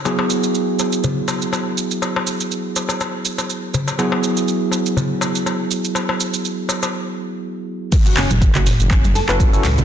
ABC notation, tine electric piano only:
X:1
M:4/4
L:1/16
Q:"Swing 16ths" 1/4=122
K:Emix
V:1 name="Tine electric piano"
[F,B,EFG]16- | [F,B,EFG]16 | [F,B,EFG]16- | [F,B,EFG]16 |
z8 z3 [CEFA]2 [CEFA] z2 |]